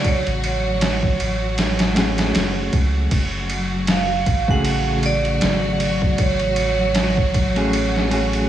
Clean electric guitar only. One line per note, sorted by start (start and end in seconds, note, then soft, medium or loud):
0.00 1.35 C#3 medium
0.00 1.35 A3 medium
0.00 1.36 F#4 medium
0.00 1.36 G#4 medium
1.95 4.43 A3 medium
1.95 4.43 C#4 medium
1.95 4.44 F#4 medium
1.95 4.44 G#4 medium
4.48 7.51 C#3 medium
4.48 7.51 A3 medium
4.48 7.51 F#4 medium
4.48 7.52 G#4 loud
7.56 8.07 A3 medium
7.56 8.07 C#4 medium
7.56 8.08 F#4 medium
7.56 8.08 G#4 loud
8.11 8.49 A3 medium
8.11 8.49 C#4 medium
8.11 8.49 F#4 medium
8.11 8.49 G#4 medium